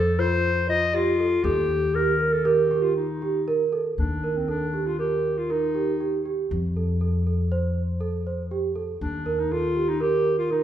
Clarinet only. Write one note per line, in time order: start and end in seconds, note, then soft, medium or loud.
0.00 0.21 A4 loud
0.19 0.69 C5 medium
0.70 0.97 D#5 loud
0.95 1.45 F4 loud
1.44 1.97 G4 medium
1.95 2.35 A#4 medium
2.33 2.47 A4 medium
2.45 2.84 G4 medium
2.82 2.95 F4 medium
2.96 3.69 D#4 medium
3.99 4.38 D4 medium
4.37 4.49 C4 medium
4.50 4.88 D4 medium
4.87 4.98 F4 medium
4.99 5.39 G4 medium
5.38 5.53 F4 medium
5.51 6.26 D#4 medium
9.02 9.40 D4 medium
9.39 9.54 D#4 medium
9.52 9.90 F4 medium
9.89 10.03 D#4 medium
10.02 10.38 G4 medium
10.38 10.50 F4 medium
10.51 10.63 D#4 medium